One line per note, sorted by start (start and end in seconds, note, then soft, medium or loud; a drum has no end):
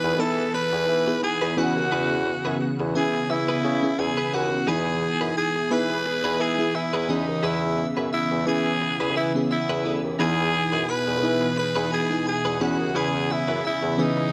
0.00 0.21 E2 loud
0.00 0.15 E3 medium
0.00 1.55 E3 medium
0.00 0.19 B3 medium
0.00 7.05 B3 medium
0.00 0.19 D#4 medium
0.00 0.19 E4 medium
0.00 1.08 G#4 medium
0.00 0.22 B4 loud
0.00 0.19 B5 medium
0.04 muted clean electric guitar stroke soft
0.19 0.45 E3 loud
0.19 0.84 B3 medium
0.19 0.84 D#4 medium
0.19 0.84 E4 medium
0.19 0.54 A4 loud
0.19 0.84 B4 medium
0.19 0.54 A5 medium
0.38 muted clean electric guitar stroke soft
0.54 1.19 B4 loud
0.54 1.19 B5 medium
0.54 muted clean electric guitar stroke soft
0.73 0.84 E2 loud
0.73 muted clean electric guitar stroke soft
0.88 1.14 E3 loud
1.07 1.55 B3 medium
1.07 1.57 D#4 medium
1.07 1.56 E4 medium
1.07 1.57 G#4 medium
1.07 muted clean electric guitar stroke soft
1.23 1.60 G#4 medium
1.23 1.55 G#5 medium
1.23 muted clean electric guitar stroke soft
1.41 1.53 E2 medium
1.41 1.57 D#4 medium
1.41 1.56 G#4 medium
1.41 1.57 B4 medium
1.57 1.71 E2 loud
1.57 4.64 C#3 medium
1.57 2.57 E3 medium
1.57 2.68 B3 medium
1.57 2.68 C#4 medium
1.57 1.73 E4 medium
1.57 2.68 E4 medium
1.57 2.69 F#4 loud
1.57 1.73 G#4 medium
1.57 2.69 G#4 medium
1.57 1.73 B4 medium
1.57 2.69 F#5 medium
1.76 1.88 D#2 medium
1.76 muted clean electric guitar stroke medium
1.91 2.32 E2 loud
1.91 2.11 E4 medium
1.91 2.10 G#4 medium
1.91 2.09 B4 medium
2.11 muted clean electric guitar stroke soft
2.26 muted clean electric guitar stroke soft
2.45 2.57 F#2 medium
2.45 2.58 E4 medium
2.45 2.58 G#4 medium
2.45 2.58 B4 medium
2.61 muted clean electric guitar stroke soft
2.80 2.91 E2 loud
2.80 muted clean electric guitar stroke medium
2.95 3.21 E3 loud
2.95 3.60 B3 medium
2.95 3.60 C#4 medium
2.95 3.60 E4 medium
2.95 3.60 G#4 medium
2.95 3.32 G#4 medium
2.95 3.27 G#5 medium
3.14 muted clean electric guitar stroke soft
3.29 3.55 E3 medium
3.29 4.01 E4 loud
3.29 3.99 E5 medium
3.29 muted clean electric guitar stroke soft
3.48 3.63 E4 medium
3.48 3.63 G#4 medium
3.48 3.64 B4 medium
3.64 3.90 C#3 medium
3.64 3.80 E4 medium
3.64 3.80 G#4 medium
3.64 3.80 B4 medium
3.83 4.47 B3 medium
3.83 4.47 C#4 medium
3.83 4.47 E4 medium
3.83 4.47 G#4 medium
3.98 4.13 E2 loud
3.98 4.36 G#4 medium
3.98 4.33 G#5 medium
3.98 muted clean electric guitar stroke soft
4.17 4.32 E4 medium
4.17 4.32 G#4 medium
4.17 4.33 B4 medium
4.33 4.59 D#2 loud
4.33 4.48 E4 medium
4.33 4.70 F#4 medium
4.33 4.49 G#4 medium
4.33 4.49 B4 medium
4.33 4.68 F#5 medium
4.52 muted clean electric guitar stroke soft
4.67 5.08 E2 medium
4.67 5.67 E3 medium
4.67 7.07 E3 medium
4.67 5.45 B3 medium
4.67 4.87 D#4 medium
4.67 5.46 D#4 medium
4.67 5.46 E4 medium
4.67 4.86 G#4 medium
4.67 7.07 G#4 loud
4.67 5.46 G#4 medium
4.67 5.37 G#4 loud
4.67 4.85 B4 loud
4.67 5.36 G#5 medium
4.86 muted clean electric guitar stroke soft
5.02 muted clean electric guitar stroke soft
5.21 5.33 F#2 medium
5.21 5.34 D#4 medium
5.21 5.34 G#4 medium
5.21 5.34 B4 medium
5.37 5.74 G#4 loud
5.37 5.69 G#5 medium
5.37 muted clean electric guitar stroke soft
5.55 muted clean electric guitar stroke soft
5.71 5.97 E3 loud
5.71 6.36 B3 medium
5.71 6.36 D#4 medium
5.71 6.36 E4 medium
5.71 6.36 G#4 medium
5.71 6.43 B4 loud
5.71 6.40 B5 medium
5.90 muted clean electric guitar stroke soft
6.06 muted clean electric guitar stroke soft
6.24 6.36 E2 medium
6.24 6.39 D#4 medium
6.24 6.39 G#4 medium
6.24 6.40 B4 medium
6.40 6.66 E3 loud
6.40 6.56 D#4 medium
6.40 6.56 G#4 medium
6.40 6.77 G#4 loud
6.40 6.56 B4 medium
6.40 6.75 G#5 medium
6.58 7.07 B3 medium
6.58 7.09 E4 medium
6.58 7.09 G#4 medium
6.74 7.12 E4 medium
6.74 7.09 E5 medium
6.74 muted clean electric guitar stroke soft
6.93 7.05 E2 medium
6.93 7.08 D#4 medium
6.93 7.08 G#4 medium
6.93 7.09 B4 medium
7.09 7.23 E2 loud
7.09 10.16 C#3 medium
7.09 14.29 E3 medium
7.09 8.09 E3 medium
7.09 8.20 B3 medium
7.09 12.57 B3 medium
7.09 8.20 C#4 medium
7.09 7.46 D#4 medium
7.09 7.24 E4 medium
7.09 7.25 G#4 medium
7.09 8.21 G#4 medium
7.09 7.25 B4 medium
7.09 7.43 D#5 medium
7.28 7.39 D#2 medium
7.28 muted clean electric guitar stroke soft
7.43 7.84 E2 loud
7.43 7.63 E4 medium
7.43 7.87 E4 medium
7.43 7.62 G#4 medium
7.43 7.61 B4 medium
7.43 7.86 E5 medium
7.62 muted clean electric guitar stroke medium
7.78 muted clean electric guitar stroke soft
7.97 8.08 F#2 medium
7.97 8.10 E4 medium
7.97 8.10 G#4 medium
7.97 8.10 B4 medium
8.12 8.45 E4 medium
8.12 8.45 E5 medium
8.12 muted clean electric guitar stroke soft
8.31 8.43 E2 medium
8.31 muted clean electric guitar stroke soft
8.46 8.72 E3 loud
8.46 9.11 B3 medium
8.46 9.12 C#4 medium
8.46 9.12 E4 medium
8.46 9.12 G#4 medium
8.46 9.13 G#4 loud
8.46 9.12 G#5 medium
8.66 muted clean electric guitar stroke medium
8.81 muted clean electric guitar stroke soft
9.00 9.17 E2 medium
9.00 9.14 E4 medium
9.00 9.15 G#4 medium
9.00 9.16 B4 medium
9.16 9.42 E3 medium
9.16 9.31 E4 medium
9.16 9.32 E4 medium
9.16 9.32 G#4 medium
9.16 9.32 B4 medium
9.16 9.30 E5 medium
9.35 9.99 B3 medium
9.35 9.99 C#4 medium
9.35 9.99 E4 medium
9.35 9.99 G#4 medium
9.35 muted clean electric guitar stroke soft
9.51 10.01 E4 medium
9.51 10.00 E5 medium
9.51 muted clean electric guitar stroke medium
9.69 9.81 E2 medium
9.69 9.83 E4 medium
9.69 9.84 G#4 medium
9.69 9.84 B4 medium
9.85 9.99 D2 medium
9.85 10.00 E4 medium
9.85 10.01 G#4 medium
9.85 10.01 B4 medium
10.04 10.15 D#2 medium
10.04 muted clean electric guitar stroke soft
10.19 10.59 E2 loud
10.19 12.59 B2 medium
10.19 11.19 E3 medium
10.19 10.97 B3 medium
10.19 10.39 D#4 medium
10.19 10.97 D#4 medium
10.19 10.98 E4 medium
10.19 10.38 G#4 medium
10.19 14.32 G#4 medium
10.19 10.98 G#4 medium
10.19 10.92 G#4 loud
10.19 10.37 B4 medium
10.19 10.84 G#5 medium
10.38 muted clean electric guitar stroke soft
10.54 muted clean electric guitar stroke soft
10.72 10.84 F#2 medium
10.72 10.86 D#4 soft
10.72 10.86 G#4 medium
10.72 10.85 B4 medium
10.88 11.58 B4 loud
10.88 11.56 B5 medium
10.88 muted clean electric guitar stroke soft
11.07 11.24 E2 medium
11.07 muted clean electric guitar stroke soft
11.22 11.48 E3 loud
11.22 11.87 B3 medium
11.22 11.87 D#4 medium
11.22 11.88 E4 medium
11.22 11.88 G#4 medium
11.41 muted clean electric guitar stroke soft
11.57 11.90 B4 loud
11.57 11.89 B5 medium
11.57 muted clean electric guitar stroke medium
11.75 11.88 E2 loud
11.75 11.90 D#4 medium
11.75 11.90 G#4 medium
11.75 11.91 B4 medium
11.91 12.07 D#4 medium
11.91 12.07 G#4 medium
11.91 12.25 G#4 loud
11.91 12.07 B4 medium
11.91 12.24 G#5 medium
12.10 12.59 B3 medium
12.10 12.61 D#4 medium
12.10 12.60 E4 medium
12.10 12.60 G#4 medium
12.26 12.64 G#4 medium
12.26 12.59 G#5 medium
12.26 muted clean electric guitar stroke soft
12.45 12.57 E2 medium
12.45 12.60 D#4 medium
12.45 12.61 G#4 medium
12.45 12.60 B4 medium
12.60 12.75 E2 loud
12.60 14.32 C#3 medium
12.60 13.60 E3 medium
12.60 13.71 B3 medium
12.60 14.31 B3 medium
12.60 13.72 C#4 medium
12.60 12.76 C#4 medium
12.60 12.76 E4 medium
12.60 13.72 E4 medium
12.60 12.99 F#4 medium
12.60 13.72 G#4 medium
12.60 12.77 B4 medium
12.60 12.95 F#5 medium
12.79 12.91 D#2 medium
12.95 13.35 E2 loud
12.95 13.15 C#4 medium
12.95 13.14 E4 medium
12.95 13.34 G#4 loud
12.95 13.13 B4 loud
12.95 13.30 G#5 medium
13.14 muted clean electric guitar stroke medium
13.30 13.65 E4 medium
13.30 13.64 E5 medium
13.30 muted clean electric guitar stroke soft
13.48 13.60 F#2 medium
13.48 13.62 C#4 soft
13.48 13.61 E4 medium
13.48 13.61 B4 medium
13.64 14.02 E4 medium
13.64 13.97 E5 medium
13.64 muted clean electric guitar stroke soft
13.83 13.94 E2 loud
13.83 muted clean electric guitar stroke medium
13.98 14.24 E3 loud
13.98 14.32 E3 medium
13.98 14.32 B3 medium
13.98 14.31 C#4 medium
13.98 14.32 D#4 medium
13.98 14.32 G#4 medium
13.98 14.32 D#5 medium
14.17 muted clean electric guitar stroke soft